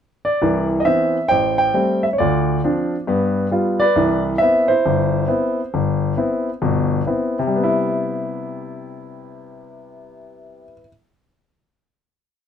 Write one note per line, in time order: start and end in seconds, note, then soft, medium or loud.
0.25 0.66 D5 medium
0.42 0.79 C2 medium
0.42 0.79 E3 medium
0.80 0.84 D#5 medium
0.85 1.16 E3 soft
0.85 1.16 B3 soft
0.85 1.16 C4 medium
0.85 1.30 E5 medium
1.28 1.68 A1 medium
1.28 2.14 C5 medium
1.28 1.57 G5 medium
1.58 2.00 G5 medium
1.74 2.05 G3 soft
1.74 2.05 A3 soft
1.74 2.06 C4 medium
2.03 2.08 E5 medium
2.13 2.18 C#5 soft
2.18 2.58 D2 medium
2.18 3.04 F4 soft
2.18 2.59 D5 medium
2.64 2.95 F3 medium
2.64 2.95 C4 soft
2.64 2.95 D4 medium
3.07 3.46 G2 medium
3.07 3.46 B3 medium
3.51 3.83 G3 soft
3.51 3.83 B3 soft
3.51 3.83 F4 medium
3.80 4.66 B4 medium
3.80 4.22 D5 medium
3.96 4.34 C2 medium
3.96 4.34 E3 medium
4.38 4.72 B3 medium
4.38 4.72 C4 soft
4.38 4.68 E4 medium
4.38 4.70 E5 medium
4.68 5.27 E4 medium
4.68 7.00 C5 medium
4.86 5.23 G1 medium
5.28 5.59 B3 medium
5.28 5.60 C4 soft
5.28 5.60 E4 medium
5.74 6.12 G1 medium
6.17 6.48 B3 soft
6.17 6.49 C4 soft
6.17 6.49 E4 medium
6.62 7.00 G1 medium
6.62 7.00 B2 medium
7.07 7.37 B3 soft
7.07 7.38 C4 soft
7.07 7.38 E4 soft
7.39 10.64 C3 medium
7.47 10.72 G3 medium
7.56 10.80 B3 medium
7.64 10.88 E4 medium